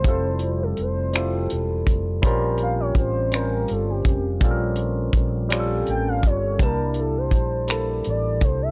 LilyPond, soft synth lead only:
\new Staff \with { instrumentName = "Soft synth lead" } { \time 6/8 \key bes \lydian \tempo 4. = 55 c''8. a'16 c''4 r4 | r8 f''16 des''16 c''8 bes'8 a'16 g'8.~ | g'16 r4. r16 g''16 f''16 des''8 | bes'8 a'16 c''4 r16 d''8 c''16 e''16 | }